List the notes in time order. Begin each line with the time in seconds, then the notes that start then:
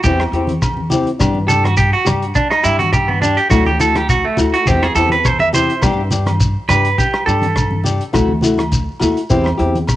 0.04 E2 E3 C4 E4 G4, kick, closed hi-hat, shekere
0.20 cross-stick, low agogo
0.32 E2 C4 E4 G4, closed hi-hat
0.47 closed hi-hat, high conga
0.62 kick, cross-stick, closed hi-hat, low agogo, shekere
0.77 high conga
0.90 C4 E4 G4, closed hi-hat, low conga, shekere
1.07 closed hi-hat
1.19 G2 B3 D4 G4, kick, cross-stick, closed hi-hat, low agogo, shekere
1.35 high conga
1.47 D4 G4 A4, closed hi-hat, low conga, shekere
1.64 F#4, cross-stick, closed hi-hat, high conga, low agogo
1.77 G4, kick, closed hi-hat, shekere
1.93 F#4
2.05 G2 D4 G4, cross-stick, closed hi-hat, low conga, low agogo, shekere
2.22 closed hi-hat
2.35 D4, kick, closed hi-hat, shekere
2.50 D#4, cross-stick, low agogo
2.63 G2 E4 G4, muted nylon-string guitar stroke, closed hi-hat, shekere
2.79 F#4, closed hi-hat, high conga
2.93 G4, kick, cross-stick, closed hi-hat, low agogo, shekere
3.08 B3, high conga
3.21 D4 G4, closed hi-hat, low conga, shekere
3.37 G4, closed hi-hat
3.50 D2 F#3 A3 E4 F#4, muted nylon-string guitar stroke, kick, cross-stick, closed hi-hat, low agogo, shekere
3.66 G4, high conga
3.80 A3 E4 F#4 A4, closed hi-hat, low conga, shekere
3.95 G4, cross-stick, closed hi-hat, high conga, low agogo
4.09 F#4, kick, closed hi-hat, shekere
4.25 A3
4.37 D2 A3 E4 F#4, closed hi-hat, low conga, low agogo, shekere
4.54 F#4, closed hi-hat
4.66 E2 E3 C4 E4 G4, kick, closed hi-hat, high conga, shekere
4.82 G#4, cross-stick, low agogo
4.95 E2 C4 E4 G4 A4, closed hi-hat, shekere
5.09 B4, closed hi-hat, high conga
5.25 C5, kick, cross-stick, closed hi-hat, low agogo, shekere
5.39 E5, high conga
5.53 C4 E4 G4 C5, closed hi-hat, low conga, shekere
5.70 closed hi-hat
5.82 G2 B3 D4 G4, muted clean electric guitar stroke, kick, cross-stick, closed hi-hat, low agogo, shekere
6.11 D4 G4, closed hi-hat, low conga, shekere
6.26 cross-stick, closed hi-hat, high conga, low agogo
6.40 kick, closed hi-hat, shekere
6.68 G2 D4 G4 B4, cross-stick, closed hi-hat, low conga, low agogo, shekere
6.85 closed hi-hat
6.98 G4, kick, closed hi-hat, shekere
7.13 cross-stick, low agogo
7.26 G2 D4 G4 A4, closed hi-hat, shekere
7.42 closed hi-hat, high conga
7.56 kick, cross-stick, closed hi-hat, low agogo, shekere
7.71 high conga
7.84 D4 G4, closed hi-hat, low conga, shekere
8.01 closed hi-hat
8.13 D2 A3 E4 F#4, muted nylon-string guitar stroke, kick, cross-stick, closed hi-hat, low agogo, shekere
8.28 high conga
8.41 A3 E4 F#4, closed hi-hat, low conga, shekere
8.58 cross-stick, closed hi-hat, high conga, low agogo
8.71 kick, closed hi-hat, shekere
9.00 D#2 A3 E4 F#4, closed hi-hat, low conga, low agogo, shekere
9.17 closed hi-hat
9.30 E2 E3 C4 E4 G4, kick, closed hi-hat, shekere
9.44 cross-stick, low agogo
9.58 E2 C4 E4 G4, closed hi-hat
9.75 closed hi-hat, high conga
9.87 kick, cross-stick, closed hi-hat, low agogo, shekere